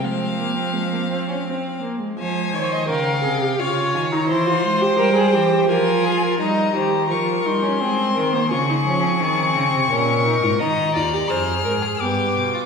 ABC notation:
X:1
M:3/4
L:1/16
Q:1/4=85
K:Fm
V:1 name="Violin"
f8- f2 z2 | a4 g4 f2 a b | c'4 g4 a4 | b4 d'2 c'6 |
d'12 | [K:Fdor] b4 f'4 d'4 |]
V:2 name="Violin"
C8- C2 z2 | c2 d e f4 d4 | c8 B2 A B | e2 c2 B4 A2 B c |
A8 B4 | [K:Fdor] e2 d2 c2 B A G3 F |]
V:3 name="Viola"
A,2 B, C A, B, C D C2 B, A, | A,2 c2 B2 A G F3 E | =E F2 G B A G2 F4 | E2 G2 F2 E D C3 B, |
F E D C4- C D2 E F | [K:Fdor] E2 F G A4 =B,4 |]
V:4 name="Cello" clef=bass
F,8- F,2 z2 | F,2 E,2 D,2 C,2 D,2 E,2 | =E,2 A,2 G,2 E,2 F,4 | G,2 E,2 F,2 G,2 A,2 E,2 |
D,2 F,2 E,2 D, C, B,,3 A,, | [K:Fdor] E,2 E,,2 F,,2 A,,2 G,,2 =B,,2 |]